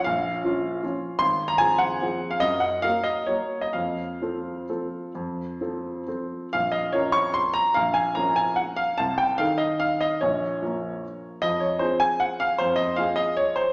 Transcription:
X:1
M:3/4
L:1/16
Q:1/4=147
K:Bbm
V:1 name="Grand piano"
f12 | c'3 b a2 g4- g f | e2 g2 f2 e2 d3 e | f12- |
f8 z4 | f2 e2 d2 d'2 c'2 b2 | f2 a2 b2 a2 g2 f2 | =a2 =g2 f2 e2 f2 e2 |
d12 | e2 d2 c2 a2 g2 f2 | c2 e2 f2 e2 d2 c2 |]
V:2 name="Grand piano"
B,,,4 [F,DF]4 [F,DF]4 | A,,,4 [F,CA]4 [F,CA]4 | G,,4 [G,B,B]4 [G,B,B]4 | F,,4 [F,C=A]4 [F,CA]4 |
F,,4 [F,C=A]4 [F,CA]4 | B,,,4 [F,DB]8 | B,,,4 [F,DB]8 | C,,4 [E,E=A]8 |
B,,,4 [F,B,B]8 | F,,4 [F,CA]8 | F,,4 [F,CA]8 |]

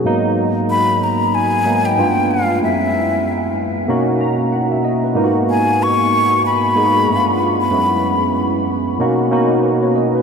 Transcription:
X:1
M:4/4
L:1/16
Q:"Swing 16ths" 1/4=94
K:G#m
V:1 name="Flute"
z4 b2 a2 g3 =g3 =f2 | e6 z8 z2 | z2 g2 c'4 b6- b b- | b4- b z8 z3 |]
V:2 name="Tine electric piano"
F z12 z3 | z8 z2 a2 f e d B- | B z12 z3 | z12 B c d B |]
V:3 name="Tine electric piano"
[G,,F,A,B,D]6 z4 [G,,F,A,B,D]2 [=G,,=A,B,=D=F]4 | [F,,G,A,B,CE]6 z2 [B,,A,CDF]2 z6 | [G,,A,B,D^EF]6 z4 [G,,A,B,DG]2 [=G,,=A,B,=D=E=F]4 | [F,,G,B,CE]6 z2 [B,,A,CDF]2 [B,,A,CDF]4 z2 |]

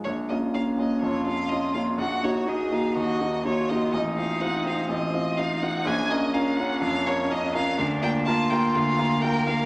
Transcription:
X:1
M:4/4
L:1/8
Q:1/4=124
K:Bbm
V:1 name="Violin"
d e f e d f e f | g d e f e2 d e | e f g f e2 f g | a e f g f d e f |
[K:Bb] f g a g f2 g f |]
V:2 name="Cello"
z4 F4 | G2 A2 G2 F2 | E4 C2 E2 | D8 |
[K:Bb] D2 F4 B2 |]
V:3 name="Grand piano"
B,,, [B,DF] [B,DF] [B,DF] F,, [B,DF] [B,DF] [B,DF] | B,,, [B,EG] [B,EG] [B,EG] E,, [B,EG] [B,EG] [B,EG] | =A,,, [CF] [CF] [CF] A,,, [CF] [CF] [CF] | B,,, [DFB] [DFB] [DFB] F,, [DFB] [DFB] [DFB] |
[K:Bb] D,, [B,FB] [B,FB] [B,FB] D,, [B,FB] [B,FB] [B,FB] |]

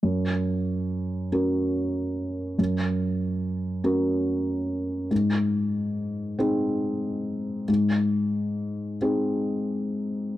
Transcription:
X:1
M:6/8
L:1/8
Q:3/8=47
K:Gblyd
V:1 name="Felt piano"
G,,3 [DGB]3 | G,,3 [DGB]3 | A,,3 [CEA]3 | A,,3 [CEA]3 |]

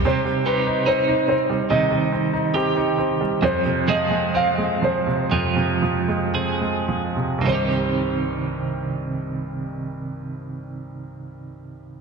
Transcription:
X:1
M:4/4
L:1/16
Q:1/4=60
K:Cm
V:1 name="Grand piano"
c2 =B2 c2 c2 e4 G4 | c2 e2 f2 c8 z2 | c16 |]
V:2 name="Clean electric guitar"
C,2 [CEG]2 E4 E,4 G4 | F,,2 [A,CA]2 C4 F,4 A4 | [C,E,CEG]16 |]
V:3 name="Grand piano" clef=bass
C, G, C E C E C G, C, G, C E C E C G, | F,, C, F, A, C A, F, C, F,, C, F, A, C A, F, C, | [C,,G,,E,G,CG]16 |]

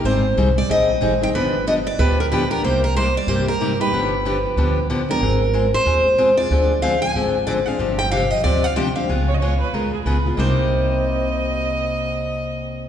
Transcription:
X:1
M:4/4
L:1/16
Q:"Swing" 1/4=186
K:Cm
V:1 name="Steel-string acoustic guitar"
c4 z2 d2 e6 g2 | =B4 e2 d2 B2 _B2 =B2 _B2 | c2 B2 c2 d2 c2 B4 =B2- | =B12 z2 _B2- |
B6 c8 d2- | d4 f2 a6 d2 f2- | f2 g2 f2 e2 d2 f2 g2 f2- | f12 z4 |
c16- | c16 |]
V:2 name="Violin"
z16 | z16 | z16 | z16 |
z16 | z16 | z16 | z2 _d e d2 _c2 B2 A2 c4 |
e16- | e16 |]
V:3 name="Steel-string acoustic guitar"
[E,G,CEA]2 z2 [E,G,CEA]2 z2 [E,G,CEA]2 z2 [E,G,CEA]2 [CEA]2 | [D,F,=B,DG]2 z2 [D,F,B,DG]2 z2 [D,F,B,DG]2 z2 [D,F,B,DG]2 [B,DG]2 | [C,G,B,EG]2 z2 [C,G,B,EG]2 z2 [C,G,B,EG]2 z2 [C,G,B,EG]2 [B,EG]2 | [D,F,=B,DG]2 z2 [D,F,B,DG]2 z2 [D,F,B,DG]2 z2 [D,F,B,DG]2 [B,DG]2 |
[A,CFA]2 z2 [A,CFA]2 z2 [A,CFA]2 z2 [A,CFA]2 [CFA]2 | [D,F,CDA]2 z2 [D,F,CDA]2 z2 [D,F,CDA]2 z2 [D,F,CDA]2 [CDA]2 | [C,F,CDG]2 z2 [C,F,CDG]2 z2 [C,F,CDG]2 z2 [C,F,CDG]2 [CDG]2 | [_D,A,_CFA]2 z2 [D,A,CFA]2 z2 [D,A,CFA]2 z2 [D,A,CFA]2 [CFA]2 |
[C,G,B,EG]16- | [C,G,B,EG]16 |]
V:4 name="Upright bass" clef=bass
A,,,4 C,,4 B,,,4 A,,,4 | G,,,8 D,,8 | C,,8 G,,8 | G,,,8 D,,8 |
A,,,8 E,,8 | D,,8 A,,,8 | G,,,8 D,,8 | _D,,8 E,,4 D,,4 |
C,,16- | C,,16 |]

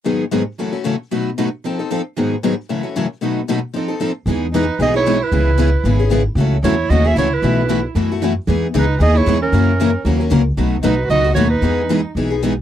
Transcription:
X:1
M:4/4
L:1/8
Q:"Swing" 1/4=228
K:E
V:1 name="Clarinet"
z8 | z8 | z8 | z8 |
z2 B2 d c2 B- | B4- B z3 | z2 c2 d e c B- | B3 z4 z |
z2 B2 d c2 ^A- | ^A4- A z3 | z2 B2 d2 c B- | B3 z4 z |]
V:2 name="Violin"
z8 | z8 | z8 | z8 |
z2 D2 G E2 E- | E4- E z3 | z2 E2 F G E E- | E3 z4 z |
z2 D2 G E2 C- | C4- C z3 | z2 D2 F2 F D- | D3 z4 z |]
V:3 name="Steel-string acoustic guitar"
[G,,D,F,B,DG] z [G,,D,F,B,DG] z [F,CEA] z [F,CEA] z | [B,,F,A,DFB] z [B,,F,A,DFB] z [=F,=C_EA] z [F,CEA] z | [G,,D,F,B,DG] z [G,,D,F,B,DG] z [F,CEA] z [F,CEA] z | [B,,F,A,DFB] z [B,,F,A,DFB] z [=F,=C_EA] z [F,CEA] z |
[E,G,B,DG] z [E,G,B,DG] z [E,G,B,DG] z [E,G,B,DG] z | [C,G,B,EG] z [C,G,B,EG] z [C,G,B,EG] z [C,G,B,EG] z | [C,F,CEA] z [C,F,CEA] z [C,F,CEA] z [C,F,CEA] z | [B,,E,A,EFB] z [B,,E,A,EFB] z [B,,E,A,EFB] z [B,,E,A,EFB] z |
[E,G,B,DG] z [E,G,B,DG] z [E,G,B,DG] z [E,G,B,DG] z | [F,CE^A] z [F,CEA] z [F,CEA] z [F,CEA] z | [B,,F,A,DFB] z [B,,F,A,DFB] z [B,,F,A,DFB] z [B,,F,A,DFB] z | [E,G,B,DG] z [E,G,B,DG] z [E,G,B,DG] z [E,G,B,DG] z |]
V:4 name="Steel-string acoustic guitar"
[G,,D,F,B,DG] z [G,,D,F,B,DG] z [F,,C,E,A,CF] [E,A,CF] [F,,C,E,A,CF] z | [B,,F,A,DF] z [B,,F,A,DF] z [=F,=C_EA] [CEA] [F,CEA] z | [G,,D,F,B,DG] z [G,,D,F,B,DG] z [F,,C,E,A,CF] [E,A,CF] [F,,C,E,A,CF] z | [B,,F,A,DF] z [B,,F,A,DF] z [=F,=C_EA] [CEA] [F,CEA] z |
[E,B,DG] z [E,B,DG] z [E,B,DG] [B,DG] [E,B,DG] z | [C,E,B,CG] z [C,E,B,CG] z [C,E,B,CG] [B,CG] [C,E,B,CG] z | [C,E,A,CF] z [C,E,A,CF] z [C,E,A,CF] [A,CF] [C,E,A,CF] z | [B,,E,A,EF] z [B,,E,A,EF] z [B,,E,A,EF] [A,EF] [B,,E,A,EF] z |
[E,B,DG] z [E,B,DG] z [E,B,DG] [B,DG] [E,B,DG] z | [C,E,^A,CF] z [C,E,A,CF] z [C,E,A,CF] [A,CF] [C,E,A,CF] z | [B,,F,A,DF] z [B,,F,A,DF] z [B,,F,A,DF] [A,DF] [B,,F,A,DF] z | [E,B,DG] z [E,B,DG] z [E,B,DG] [B,DG] [E,B,DG] z |]
V:5 name="Upright bass" clef=bass
z8 | z8 | z8 | z8 |
E,,4 B,,,4 | C,,4 G,,,4 | C,,2 E,,2 D,,2 C,,2 | B,,,4 F,,4 |
E,,2 C,,2 D,,2 E,,2 | F,,4 D,,2 C,,2 | B,,,2 B,,,2 C,,2 D,,2 | E,,4 B,,,4 |]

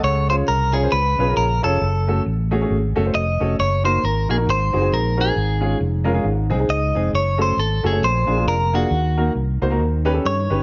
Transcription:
X:1
M:4/4
L:1/16
Q:"Swing" 1/4=135
K:Db
V:1 name="Clean electric guitar"
d2 c2 B2 A2 _c4 B2 =A2- | =A4 z8 e4 | d2 c2 B2 A2 c4 B2 A2- | A4 z8 e4 |
d2 c2 =A2 _A2 c4 B2 G2- | G4 z8 d4 |]
V:2 name="Grand piano"
[=Ag]2 [DF_Ad] z3 [DFAd] [DFAc] z2 [DFA_c] [DFAB] z2 [DFAd] z | z2 [=A,DG=A] z3 [A,DG_A] [=A,DG_A] z2 [=A,DG=A] [A,DGc] z2 [A,DGA] z | z2 [B,EGB] z3 [B,EGB] [B,EGB] z2 [CEGA] [CEGA] z2 [CEGB] z | z2 [A,DFA] z3 [A,DFB] [A,DFA] z2 [A,CEA] [A,CEA] z2 [A,CEA] z |
z2 [=A,DG=A] z3 [A,DGA] [A,DGA] z2 [B,=DF_A] [B,DFA] z2 [B,DFA] z | z2 [B,EGB] z3 [B,EGc] [B,EGB] z2 [DE=G=B] [DEG=A] z2 [DEGB] z |]
V:3 name="Grand piano" clef=bass
D,6 z2 D,6 z2 | z16 | z8 A,,6 z2 | A,,6 z2 A,,6 z2 |
z8 B,,6 z2 | E,6 z2 E,6 z2 |]
V:4 name="Fingered electric bass" clef=bass
D,,4 C,,4 D,,2 _C,,2 B,,,2 F,,,2 | G,,,4 =A,,,4 _A,,,2 G,,,2 F,,,2 F,,,2 | G,,,4 A,,,2 B,,,2 A,,,2 G,,,2 B,,,4 | A,,,4 F,,,4 A,,,2 C,,2 D,,2 F,,,2 |
G,,,4 A,,,2 G,,,2 B,,,2 B,,,2 F,,,4 | E,,4 C,,2 D,,2 E,,4 =G,,2 =G,,,2 |]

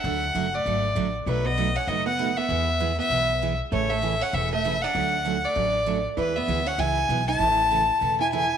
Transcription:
X:1
M:4/4
L:1/8
Q:"Swing" 1/4=196
K:A
V:1 name="Fiddle"
f3 d4 z | B ^d2 f d f2 e- | e3 e4 z | c e2 f e e2 f- |
f3 d4 z | B e2 f g3 a- | a4- a g g2 |]
V:2 name="Hollow-body jazz guitar"
D3 A,4 z | F, B,2 C B, B,2 B,- | B,3 B,4 z | A, A,2 C A, A,2 D- |
D3 A,4 z | E, B,2 C E3 E- | E4- E E E2 |]
V:3 name="Steel-string acoustic guitar"
[D,F,A,DF] z [D,F,A,DF] z [D,F,A,DF] z [D,F,A,DF] z | [B,,F,A,^DF] z [B,,F,A,DF] z [B,,F,A,DF] z [B,,F,A,DF] z | [E,G,B,EG] z [E,G,B,EG] z [E,G,B,EG] z [E,G,B,EG] z | [C,E,A,CG] z [C,E,A,CG] z [C,E,A,CG] z [C,E,A,CG] z |
[D,F,A,CF] z [D,F,A,CF] z [D,F,A,CF] z [D,F,A,CF] z | [E,G,B,EG] z [E,G,B,EG] z [E,G,B,EG] z [E,G,B,EG] z | [C,E,A,CG] z [C,E,A,CG] z [C,E,A,CG] z [C,E,A,CG] z |]
V:4 name="Upright bass" clef=bass
D,,2 F,,,2 G,,,2 A,,,2 | B,,,4 F,,,4 | E,,4 B,,,4 | A,,,4 E,,,4 |
D,,4 A,,,4 | E,,2 D,,2 C,,2 B,,,2 | A,,,4 E,,,4 |]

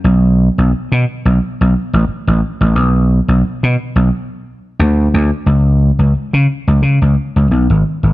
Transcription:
X:1
M:4/4
L:1/16
Q:"Swing 16ths" 1/4=88
K:C#phr
V:1 name="Slap bass" clef=bass
B,,,3 B,,, z B,, z B,,, z B,,, z A,,, z A,,, z A,,, | B,,,3 B,,, z B,, z B,,, z4 D,,2 D,, z | C,,3 C,, z C, z C,, C, C,, z C,, B,,, G,,, z G,,, |]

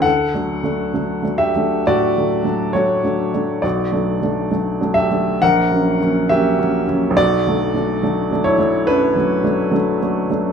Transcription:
X:1
M:4/4
L:1/8
Q:1/4=68
K:Bm
V:1 name="Upright piano"
[Af]3 [Ge] [Fd]2 [Fc]2 | [Fd]3 [Ge] [^Af]2 [Ge]2 | [Fd]3 [Ec] [DB]2 z2 |]
V:2 name="Upright piano"
(3D,, [F,A,D] [F,A,D] (3[F,A,D] [F,A,D] [F,A,D] (3A,, [F,A,D] [F,A,D] (3[F,A,D] [F,A,D] [F,A,D] | (3B,,, [F,A,D] [F,A,D] (3[F,A,D] [F,A,D] [F,A,D] (3^A,,, [F,^A,C] [F,A,C] (3[F,A,C] [F,A,C] [F,A,C] | (3B,,, [F,A,D] [F,A,D] (3[F,A,D] [F,A,D] [F,A,D] (3F,, [F,A,D] [F,A,D] (3[F,A,D] [F,A,D] [F,A,D] |]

